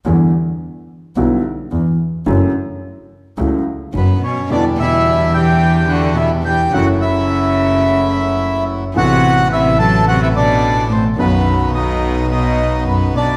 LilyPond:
<<
  \new Staff \with { instrumentName = "Bandoneon" } { \time 4/4 \key e \minor \tempo 4 = 108 r1 | r2. <b b'>8 <cis' cis''>8 | <d' d''>8 <e' e''>4 <g' g''>4 <fis' fis''>8 <e' e''>8 <g' g''>8 | <fis' fis''>8 <e' e''>2. r8 |
<fis' fis''>4 <e' e''>8 <a' a''>8 <fis' fis''>16 <e' e''>16 <d' d''>4 <c' c''>8 | <b b'>4 <dis' dis''>4 <dis' dis''>4 <b b'>8 <d' d''>8 | }
  \new Staff \with { instrumentName = "Bandoneon" } { \time 4/4 \key e \minor r1 | r1 | <d' e' g'>1 | <a e' fis'>1 |
<b a'>1 | <b dis' fis'>1 | }
  \new Staff \with { instrumentName = "Upright piano" } { \clef bass \time 4/4 \key e \minor <e, d e g b e'>8 r4. <b,, b, d g b e'>8 r8 <e, e>8 r8 | <fis, cis fis a e'>8 r4. <cis, cis fis a e'>8 r8 <fis, fis>8 r8 | <e, d e g b e'>1 | <fis, cis fis a e'>1 |
<a,, a, e a b e'>1 | <b,, b, dis fis b fis'>1 | }
  \new Staff \with { instrumentName = "Cello" } { \clef bass \time 4/4 \key e \minor r1 | r2. fis,8 b,8 | b,8 b,4 e4 d8 b,8 e8 | cis8 cis2. r8 |
c4 c8 fis8 c16 c16 b,4 a,8 | fis,4 b,4 b,4 fis,8 b,8 | }
  \new Staff \with { instrumentName = "Double bass" } { \clef bass \time 4/4 \key e \minor e,8 r4. b,,8 r8 e,8 r8 | fis,,8 r4. cis,8 r8 fis,,8 r8 | e,1 | fis,,1 |
a,,1 | b,,1 | }
>>